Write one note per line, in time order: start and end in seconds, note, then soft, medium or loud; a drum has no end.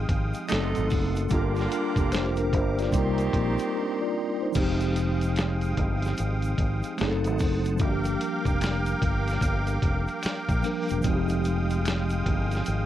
0.00 0.44 F3 medium
0.00 0.45 G#3 medium
0.00 0.48 G#3 medium
0.00 0.46 C4 medium
0.00 0.47 D#4 medium
0.00 0.48 G4 medium
0.00 0.46 F5 medium
0.00 0.46 G5 medium
0.00 1.28 D#6 medium
0.09 0.32 G#1 medium
0.09 kick medium
0.09 closed hi-hat medium
0.34 closed hi-hat soft
0.34 shaker soft
0.49 0.73 F#1 medium
0.49 0.89 C3 medium
0.49 1.30 F#3 medium
0.49 0.90 A3 medium
0.49 1.31 A3 medium
0.49 1.32 C4 medium
0.49 0.89 D#4 medium
0.49 1.32 D#4 medium
0.49 1.30 A4 medium
0.49 1.32 A4 medium
0.49 1.30 F#5 medium
0.49 1.30 C6 medium
0.49 finger snap medium
0.49 snare loud
0.49 closed hi-hat medium
0.49 shaker medium
0.75 0.90 G#1 medium
0.75 closed hi-hat soft
0.75 shaker medium
0.90 1.26 F#1 medium
0.90 kick medium
0.90 open hi-hat soft
0.90 shaker soft
1.16 closed hi-hat soft
1.16 shaker medium
1.28 2.50 D3 medium
1.28 2.88 G3 medium
1.28 1.70 A#3 medium
1.28 2.50 A#3 medium
1.28 1.71 D4 medium
1.28 2.50 F4 medium
1.28 4.52 G4 medium
1.28 2.92 F5 medium
1.28 4.52 A#5 medium
1.28 2.91 D6 medium
1.28 kick loud
1.28 closed hi-hat medium
1.28 shaker medium
1.32 1.66 G1 loud
1.32 1.72 F4 medium
1.32 1.42 A4 medium
1.42 1.71 A#4 medium
1.55 snare soft
1.55 closed hi-hat medium
1.55 shaker medium
1.71 1.97 D4 soft
1.71 1.96 A#4 medium
1.71 closed hi-hat medium
1.71 shaker soft
1.96 2.54 F1 medium
1.96 2.12 A#3 medium
1.96 2.12 G4 medium
1.96 kick medium
1.96 closed hi-hat soft
1.96 shaker soft
2.12 2.37 C5 medium
2.12 finger snap medium
2.12 snare loud
2.12 closed hi-hat medium
2.12 shaker medium
2.36 2.53 D4 medium
2.36 2.52 A#4 medium
2.36 closed hi-hat soft
2.36 shaker soft
2.53 2.88 G1 loud
2.53 2.78 C5 medium
2.53 kick medium
2.53 closed hi-hat medium
2.79 3.18 F4 medium
2.79 3.18 D5 medium
2.79 snare soft
2.79 closed hi-hat soft
2.79 shaker soft
2.91 3.28 C2 loud
2.91 4.12 D#3 medium
2.91 4.51 G3 medium
2.91 4.52 A#3 medium
2.91 4.12 C4 medium
2.91 4.53 C4 medium
2.91 4.53 D#4 medium
2.91 4.12 G4 medium
2.91 4.54 C6 medium
2.91 kick medium
2.91 closed hi-hat medium
2.91 shaker medium
2.96 3.74 D#4 medium
2.96 3.74 A#4 medium
3.18 closed hi-hat soft
3.18 shaker medium
3.33 3.56 A#1 medium
3.33 kick medium
3.33 closed hi-hat medium
3.59 closed hi-hat soft
3.59 shaker medium
3.75 4.00 D4 medium
3.75 3.99 A#4 medium
4.01 4.40 F4 medium
4.01 4.39 D5 medium
4.42 4.57 D#4 medium
4.42 4.80 C5 medium
4.52 6.93 F3 medium
4.52 6.94 G#3 medium
4.52 6.96 G#3 medium
4.52 6.95 C4 medium
4.52 6.96 F5 medium
4.52 6.96 G5 medium
4.52 7.76 D#6 medium
4.52 kick loud
4.52 closed hi-hat medium
4.52 crash loud
4.52 shaker medium
4.56 5.74 F1 loud
4.56 6.96 D#4 medium
4.56 6.97 G4 medium
4.80 closed hi-hat medium
4.80 shaker medium
4.96 closed hi-hat medium
4.96 shaker soft
5.21 closed hi-hat soft
5.21 shaker soft
5.36 finger snap medium
5.36 snare loud
5.36 closed hi-hat medium
5.36 shaker medium
5.61 closed hi-hat soft
5.61 shaker soft
5.77 6.12 G1 loud
5.77 kick loud
5.77 closed hi-hat medium
6.02 snare soft
6.02 closed hi-hat soft
6.02 shaker soft
6.17 6.53 G#1 loud
6.17 closed hi-hat medium
6.17 shaker medium
6.42 closed hi-hat soft
6.42 shaker medium
6.58 6.81 G#1 medium
6.58 kick medium
6.58 closed hi-hat medium
6.83 closed hi-hat medium
6.83 shaker soft
6.97 7.27 F#1 loud
6.97 7.79 F#3 medium
6.97 7.80 A3 medium
6.97 7.80 C4 medium
6.97 7.81 D#4 medium
6.97 7.08 G#4 medium
6.97 7.79 C5 medium
6.97 7.79 F#5 medium
6.97 7.79 A5 medium
6.97 finger snap medium
6.97 snare loud
6.97 closed hi-hat medium
6.97 shaker medium
7.08 7.84 A4 medium
7.24 7.42 G#1 medium
7.24 closed hi-hat soft
7.24 shaker medium
7.39 7.81 F#1 medium
7.39 kick medium
7.39 open hi-hat soft
7.39 shaker medium
7.65 closed hi-hat soft
7.65 shaker soft
7.77 10.58 F3 medium
7.77 10.59 G3 medium
7.77 10.60 A#3 medium
7.77 kick loud
7.77 closed hi-hat medium
7.77 shaker medium
7.81 8.15 G1 medium
7.81 10.61 D4 medium
7.81 7.90 F#4 medium
7.81 11.02 A#4 medium
7.81 12.86 F5 medium
7.81 12.86 G5 medium
7.81 11.01 D6 loud
7.91 10.65 G4 medium
8.04 closed hi-hat medium
8.04 shaker medium
8.21 closed hi-hat medium
8.21 shaker soft
8.45 8.93 F1 medium
8.45 kick medium
8.45 closed hi-hat medium
8.45 shaker soft
8.61 finger snap medium
8.61 snare loud
8.61 closed hi-hat medium
8.61 shaker medium
8.86 closed hi-hat soft
8.86 shaker soft
9.02 9.37 G1 medium
9.02 kick loud
9.02 closed hi-hat medium
9.28 snare soft
9.28 closed hi-hat soft
9.28 shaker soft
9.41 9.77 G1 loud
9.41 kick medium
9.41 closed hi-hat medium
9.41 shaker medium
9.67 closed hi-hat soft
9.67 shaker medium
9.82 10.05 F1 medium
9.82 kick medium
9.82 closed hi-hat medium
10.07 closed hi-hat medium
10.07 shaker soft
10.23 finger snap medium
10.23 muted fretless electric bass stroke soft
10.23 snare loud
10.23 closed hi-hat medium
10.23 shaker medium
10.49 10.62 A#1 medium
10.49 kick loud
10.49 closed hi-hat soft
10.49 shaker soft
10.62 11.00 F3 medium
10.62 11.04 G3 medium
10.62 11.04 A#3 medium
10.62 11.05 D4 medium
10.62 11.05 A#4 medium
10.62 open hi-hat medium
10.62 shaker soft
10.89 11.03 E1 medium
10.89 closed hi-hat soft
10.89 shaker medium
11.01 12.86 F3 medium
11.01 12.86 G#3 medium
11.01 12.86 D#6 loud
11.01 kick loud
11.01 closed hi-hat medium
11.01 shaker medium
11.05 12.22 F1 loud
11.05 12.86 C4 medium
11.05 12.86 D#4 medium
11.05 11.15 F#4 medium
11.16 12.86 G4 medium
11.29 closed hi-hat medium
11.29 shaker medium
11.44 closed hi-hat medium
11.44 shaker soft
11.70 closed hi-hat soft
11.70 shaker soft
11.85 finger snap medium
11.85 snare loud
11.85 closed hi-hat medium
11.85 shaker medium
12.10 closed hi-hat soft
12.10 shaker soft
12.26 12.61 G1 medium
12.26 kick medium
12.26 closed hi-hat medium
12.51 snare soft
12.51 closed hi-hat soft
12.51 shaker soft
12.66 12.86 G#1 loud
12.66 closed hi-hat medium
12.66 shaker medium